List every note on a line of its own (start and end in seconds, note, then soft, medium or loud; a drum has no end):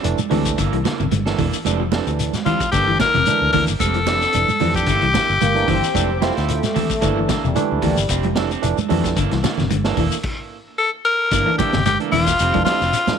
0.03 0.17 F1 medium
0.03 0.18 E3 medium
0.03 0.18 A3 medium
0.03 0.19 D4 loud
0.03 closed hi-hat medium
0.03 shekere medium
0.18 muted fingered electric bass stroke soft
0.18 high conga medium
0.18 shekere medium
0.30 0.54 D2 medium
0.30 0.57 E3 medium
0.30 0.46 E3 medium
0.30 0.48 G3 medium
0.30 0.58 A3 medium
0.30 0.48 C4 medium
0.30 0.58 D4 loud
0.30 0.48 D4 medium
0.30 0.48 A4 medium
0.30 open hi-hat medium
0.30 high conga medium
0.30 low conga medium
0.30 shekere soft
0.45 kick medium
0.45 closed hi-hat soft
0.45 shekere medium
0.58 0.71 G1 loud
0.58 0.66 D3 medium
0.58 0.75 E3 medium
0.58 0.75 A#3 medium
0.58 0.75 D4 medium
0.58 0.75 A4 medium
0.58 kick medium
0.58 closed hi-hat medium
0.58 shekere medium
0.72 0.83 C2 medium
0.72 0.80 E3 medium
0.72 closed hi-hat soft
0.84 0.93 D3 medium
0.84 1.02 E3 medium
0.84 1.02 A#3 medium
0.84 1.02 D4 medium
0.84 1.02 A4 medium
0.84 snare medium
0.84 closed hi-hat medium
0.84 high conga medium
0.84 shekere medium
1.00 1.10 G1 medium
1.00 1.06 C3 medium
1.00 low conga medium
1.00 shekere soft
1.11 1.34 G1 medium
1.11 1.26 D3 medium
1.11 closed hi-hat medium
1.11 high conga medium
1.11 shekere medium
1.26 1.45 E3 medium
1.26 1.46 A3 medium
1.26 1.37 A#3 soft
1.26 1.46 D4 medium
1.26 1.38 D4 medium
1.26 1.38 A4 medium
1.26 snare medium
1.26 closed hi-hat soft
1.38 1.51 E1 loud
1.38 1.55 E3 medium
1.38 1.53 E3 medium
1.38 1.55 A#3 medium
1.38 1.56 D4 medium
1.38 1.56 A4 medium
1.38 kick medium
1.38 open hi-hat medium
1.38 low conga medium
1.38 shekere soft
1.53 shekere medium
1.65 2.01 F1 loud
1.65 1.80 E3 medium
1.65 1.82 G3 medium
1.65 1.80 A3 medium
1.65 1.82 C4 medium
1.65 1.80 D4 medium
1.65 1.83 A4 medium
1.65 muted clean electric guitar stroke medium
1.65 closed hi-hat medium
1.65 high conga medium
1.65 shekere medium
1.80 1.94 F3 medium
1.92 2.33 E3 medium
1.92 2.09 G3 medium
1.92 2.33 A3 medium
1.92 2.09 C4 medium
1.92 2.33 D4 medium
1.92 2.09 D4 medium
1.92 2.10 A4 medium
1.92 snare medium
1.92 closed hi-hat soft
1.92 high conga medium
2.07 2.29 D2 medium
2.07 closed hi-hat soft
2.07 shekere soft
2.19 closed hi-hat medium
2.19 shekere medium
2.33 snare soft
2.33 closed hi-hat soft
2.33 high conga medium
2.33 shekere medium
2.45 2.61 E3 medium
2.45 2.63 G3 medium
2.45 2.63 C4 medium
2.45 2.63 D4 medium
2.45 2.71 F4 medium
2.45 2.63 A4 medium
2.45 closed hi-hat soft
2.45 high conga medium
2.45 low conga medium
2.45 shekere soft
2.60 kick medium
2.60 shekere medium
2.72 2.96 G1 medium
2.72 2.81 D3 medium
2.72 2.89 E3 medium
2.72 2.99 E3 medium
2.72 2.99 A3 medium
2.72 2.90 A#3 medium
2.72 2.90 D4 medium
2.72 3.00 D4 medium
2.72 2.97 G4 loud
2.72 2.90 A4 medium
2.72 kick medium
2.72 closed hi-hat medium
2.72 shekere medium
2.88 2.94 E3 medium
2.99 3.08 D3 medium
2.99 3.16 E3 medium
2.99 3.16 A#3 soft
2.99 3.17 D4 medium
2.99 3.17 A4 medium
2.99 3.50 A#4 loud
2.99 kick medium
2.99 snare medium
2.99 closed hi-hat medium
2.99 high conga medium
2.99 shekere medium
3.14 3.25 E1 loud
3.14 3.21 C3 medium
3.14 snare soft
3.14 low conga medium
3.14 shekere soft
3.25 3.41 D3 medium
3.25 3.67 E3 medium
3.25 3.68 A3 medium
3.25 3.68 D4 loud
3.25 closed hi-hat medium
3.25 high conga medium
3.25 shekere medium
3.42 3.52 D2 medium
3.52 3.65 D2 medium
3.52 3.70 E3 medium
3.52 3.68 E3 medium
3.52 3.70 A#3 medium
3.52 3.70 D4 medium
3.52 3.70 A4 medium
3.52 3.65 A#4 medium
3.52 kick medium
3.52 open hi-hat medium
3.52 low conga medium
3.52 shekere soft
3.68 3.79 G1 medium
3.68 shekere medium
3.79 4.25 F1 medium
3.79 3.97 G3 medium
3.79 3.97 C4 medium
3.79 3.97 D4 medium
3.79 3.97 A4 medium
3.79 4.72 A4 loud
3.79 kick medium
3.79 closed hi-hat medium
3.79 high conga medium
3.79 shekere medium
3.94 4.09 F3 medium
3.94 closed hi-hat soft
4.06 4.21 E3 medium
4.06 4.21 G3 soft
4.06 4.21 A3 medium
4.06 4.21 C4 medium
4.06 4.20 D4 medium
4.06 4.21 D4 medium
4.06 4.20 A4 medium
4.06 snare medium
4.06 closed hi-hat medium
4.06 high conga loud
4.21 4.37 C4 soft
4.21 4.37 D4 soft
4.21 4.37 A4 medium
4.21 snare soft
4.21 closed hi-hat soft
4.21 shekere soft
4.33 4.47 F1 loud
4.33 4.48 E3 medium
4.33 4.48 A3 medium
4.33 4.48 D4 medium
4.33 closed hi-hat medium
4.33 shekere medium
4.48 muted fingered electric bass stroke soft
4.48 high conga medium
4.48 shekere medium
4.60 4.84 F2 medium
4.60 4.75 E3 medium
4.60 4.88 E3 medium
4.60 4.77 G3 medium
4.60 4.88 A3 medium
4.60 4.78 C4 medium
4.60 4.78 D4 medium
4.60 4.88 D4 medium
4.60 4.78 A4 medium
4.60 open hi-hat medium
4.60 low conga medium
4.60 shekere soft
4.74 6.32 G4 loud
4.74 kick medium
4.74 closed hi-hat soft
4.74 shekere medium
4.86 5.00 G1 loud
4.86 4.95 D3 medium
4.86 5.05 E3 medium
4.86 5.05 A#3 medium
4.86 5.05 D4 medium
4.86 5.05 A4 medium
4.86 kick medium
4.86 closed hi-hat medium
4.86 shekere medium
5.02 5.13 C2 medium
5.02 5.08 E3 medium
5.02 closed hi-hat soft
5.14 5.22 D3 medium
5.14 5.31 E3 medium
5.14 5.31 A#3 medium
5.14 5.32 A4 medium
5.14 muted clean electric guitar stroke medium
5.14 kick medium
5.14 snare medium
5.14 closed hi-hat medium
5.14 high conga medium
5.14 shekere medium
5.30 5.40 G1 medium
5.30 shekere soft
5.41 5.64 G1 medium
5.41 5.56 D3 medium
5.41 5.67 A#3 loud
5.41 closed hi-hat medium
5.41 high conga medium
5.41 shekere medium
5.55 5.74 E3 medium
5.55 5.75 A3 medium
5.55 5.75 D4 medium
5.55 closed hi-hat soft
5.67 5.80 G1 loud
5.67 5.85 E3 medium
5.67 5.83 E3 medium
5.67 5.85 A#3 medium
5.67 6.21 C4 loud
5.67 5.85 D4 medium
5.67 5.86 A4 medium
5.67 kick medium
5.67 open hi-hat medium
5.67 low conga medium
5.67 shekere soft
5.84 shekere medium
5.94 6.30 F1 loud
5.94 6.09 E3 medium
5.94 6.12 G3 medium
5.94 6.09 A3 medium
5.94 6.12 C4 medium
5.94 6.12 D4 medium
5.94 6.09 D4 loud
5.94 6.12 A4 medium
5.94 kick medium
5.94 closed hi-hat medium
5.94 high conga medium
5.94 shekere medium
6.21 6.36 G3 medium
6.21 6.62 A3 medium
6.21 6.36 C4 medium
6.21 6.34 C4 loud
6.21 6.35 D4 medium
6.21 6.62 E4 medium
6.21 6.63 F4 loud
6.21 6.34 A4 medium
6.21 snare medium
6.21 closed hi-hat medium
6.21 high conga loud
6.36 6.60 D2 medium
6.36 6.52 D4 soft
6.36 6.51 A4 medium
6.36 snare soft
6.36 closed hi-hat soft
6.36 shekere soft
6.48 7.40 A3 medium
6.48 closed hi-hat medium
6.48 shekere medium
6.63 snare soft
6.63 closed hi-hat soft
6.63 high conga medium
6.63 shekere medium
6.74 6.90 E3 medium
6.74 6.92 G3 medium
6.74 6.92 C4 medium
6.74 6.92 D4 medium
6.74 6.92 A4 medium
6.74 open hi-hat medium
6.74 high conga medium
6.74 low conga medium
6.74 shekere soft
6.90 kick medium
6.90 shekere medium
7.01 7.25 G1 loud
7.01 7.10 D3 medium
7.01 7.19 E3 medium
7.01 7.28 E3 medium
7.01 7.28 A3 medium
7.01 7.19 A#3 medium
7.01 7.19 D4 medium
7.01 7.29 D4 loud
7.01 7.19 A4 medium
7.01 kick loud
7.01 closed hi-hat medium
7.01 shekere medium
7.17 7.24 E3 medium
7.28 7.37 D3 medium
7.28 7.46 E3 medium
7.28 7.46 A#3 medium
7.28 7.46 D4 medium
7.28 7.46 A4 medium
7.28 kick medium
7.28 snare medium
7.28 closed hi-hat medium
7.28 high conga loud
7.28 shekere medium
7.44 7.55 E1 loud
7.44 7.51 C3 medium
7.44 8.51 G3 medium
7.44 shekere soft
7.55 7.71 D3 medium
7.55 7.96 E3 loud
7.55 7.96 A3 medium
7.55 7.96 D4 loud
7.55 closed hi-hat medium
7.55 high conga medium
7.55 shekere medium
7.72 7.82 D2 medium
7.82 7.95 D2 medium
7.82 7.99 E3 medium
7.82 7.98 E3 medium
7.82 7.99 A#3 medium
7.82 7.99 D4 medium
7.82 8.00 A4 medium
7.82 kick medium
7.82 open hi-hat medium
7.82 low conga medium
7.82 shekere soft
7.97 8.08 G1 medium
7.97 shekere medium
8.08 8.55 F1 loud
8.08 8.26 G3 medium
8.08 8.26 C4 medium
8.08 8.26 D4 medium
8.08 muted clean electric guitar stroke medium
8.08 kick medium
8.08 closed hi-hat medium
8.08 shekere medium
8.23 8.39 F3 medium
8.23 closed hi-hat soft
8.23 high conga medium
8.35 8.50 E3 medium
8.35 8.50 G3 medium
8.35 8.50 A3 medium
8.35 8.50 C4 medium
8.35 8.50 D4 medium
8.35 8.49 A4 medium
8.35 snare medium
8.35 closed hi-hat medium
8.35 high conga medium
8.50 8.66 C4 soft
8.50 8.66 D4 medium
8.50 8.66 A4 medium
8.50 closed hi-hat soft
8.50 shekere soft
8.62 8.76 F1 medium
8.62 8.77 E3 medium
8.62 8.77 A3 medium
8.62 8.77 D4 loud
8.62 closed hi-hat medium
8.62 shekere medium
8.78 muted fingered electric bass stroke soft
8.78 high conga medium
8.78 shekere medium
8.89 9.13 F2 medium
8.89 9.17 E3 medium
8.89 9.05 E3 medium
8.89 9.07 G3 medium
8.89 9.17 A3 medium
8.89 9.07 C4 medium
8.89 9.17 D4 loud
8.89 9.07 D4 medium
8.89 9.07 A4 medium
8.89 open hi-hat medium
8.89 low conga medium
8.89 shekere soft
9.04 kick medium
9.04 snare soft
9.04 closed hi-hat soft
9.04 shekere medium
9.16 9.29 G1 loud
9.16 9.25 D3 medium
9.16 9.34 E3 medium
9.16 9.34 A#3 medium
9.16 9.34 D4 medium
9.16 9.34 A4 medium
9.16 kick medium
9.16 closed hi-hat medium
9.16 shekere medium
9.31 9.43 C2 medium
9.31 9.38 E3 medium
9.31 snare soft
9.31 closed hi-hat soft
9.43 9.52 D3 medium
9.43 9.60 E3 medium
9.43 9.61 A#3 medium
9.43 9.61 D4 medium
9.43 9.61 A4 medium
9.43 snare medium
9.43 closed hi-hat medium
9.43 high conga medium
9.43 shekere medium
9.58 9.70 G1 medium
9.58 9.65 C3 medium
9.58 snare soft
9.58 low conga medium
9.58 shekere soft
9.70 9.94 G1 medium
9.70 9.85 D3 medium
9.70 closed hi-hat medium
9.70 high conga medium
9.70 shekere medium
9.84 10.04 E3 medium
9.84 10.04 A3 medium
9.84 9.96 A#3 medium
9.84 10.04 D4 medium
9.84 9.97 D4 medium
9.84 9.97 A4 medium
9.84 snare medium
9.84 closed hi-hat soft
9.97 10.09 E1 medium
9.97 10.12 E3 medium
9.97 10.14 E3 medium
9.97 10.15 A#3 medium
9.97 10.15 D4 medium
9.97 10.15 A4 medium
9.97 kick medium
9.97 open hi-hat medium
9.97 low conga medium
9.97 shekere soft
10.12 shekere medium
10.23 kick medium
10.23 crash medium
10.78 10.90 A4 medium
11.05 11.55 A#4 loud
11.31 11.44 G1 medium
11.31 11.40 D3 medium
11.31 11.49 E3 medium
11.31 11.49 A#3 medium
11.31 11.49 D4 medium
11.31 muted clean electric guitar stroke medium
11.31 kick medium
11.31 closed hi-hat medium
11.31 shekere medium
11.46 11.72 E3 medium
11.46 11.53 E3 medium
11.46 11.72 A3 medium
11.46 11.72 D4 medium
11.58 11.67 D3 medium
11.58 11.76 E3 medium
11.58 11.76 A#3 medium
11.58 11.76 D4 medium
11.58 11.83 G4 medium
11.58 11.77 A4 medium
11.58 muted fingered electric bass stroke soft
11.58 kick medium
11.58 closed hi-hat medium
11.58 high conga medium
11.58 shekere medium
11.73 11.96 G1 medium
11.73 11.80 C3 medium
11.73 snare medium
11.73 closed hi-hat soft
11.73 low conga medium
11.73 shekere soft
11.85 12.00 D3 medium
11.85 11.98 G4 medium
11.85 snare soft
11.85 closed hi-hat medium
11.85 high conga medium
11.85 shekere medium
12.00 12.26 E3 medium
12.00 12.26 A3 medium
12.00 12.13 A#3 soft
12.00 12.26 D4 medium
12.00 12.13 D4 soft
12.00 12.13 A4 medium
12.00 closed hi-hat soft
12.12 12.35 E1 medium
12.12 12.30 E3 medium
12.12 12.28 E3 medium
12.12 12.30 A#3 medium
12.12 12.30 D4 medium
12.12 12.62 F4 loud
12.12 12.30 A4 medium
12.12 open hi-hat medium
12.12 low conga medium
12.12 shekere soft
12.27 kick medium
12.27 snare soft
12.27 shekere medium
12.39 12.62 F1 medium
12.39 12.56 G3 medium
12.39 12.57 C4 medium
12.39 12.57 A4 medium
12.39 muted clean electric guitar stroke medium
12.39 closed hi-hat medium
12.39 shekere medium
12.54 12.80 E3 medium
12.54 12.69 F3 medium
12.54 12.80 A3 medium
12.54 12.80 D4 medium
12.54 kick medium
12.54 closed hi-hat soft
12.54 high conga medium
12.65 12.81 G3 medium
12.65 12.81 C4 medium
12.65 12.80 D4 medium
12.65 13.15 F4 loud
12.65 12.80 A4 medium
12.65 snare medium
12.65 closed hi-hat medium
12.65 high conga loud
12.81 12.91 F1 medium
12.81 12.97 C4 soft
12.81 12.96 D4 soft
12.81 12.96 A4 medium
12.81 snare soft
12.81 shekere soft
12.93 closed hi-hat medium
12.93 shekere medium
13.07 13.19 E3 medium
13.07 13.19 A3 medium
13.07 13.19 D4 medium
13.07 muted fingered electric bass stroke soft
13.07 snare medium
13.07 closed hi-hat soft
13.07 high conga medium
13.07 shekere medium